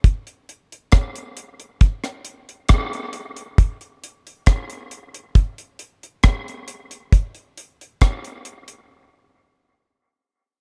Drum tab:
HH |xxxxxxxxxxxxxxxx|xxxxxxxxxxxxxxxx|xxxxxxxx--------|
SD |----r----r--r---|----r-------r---|----r-----------|
BD |o---o---o---o---|o---o---o---o---|o---o-----------|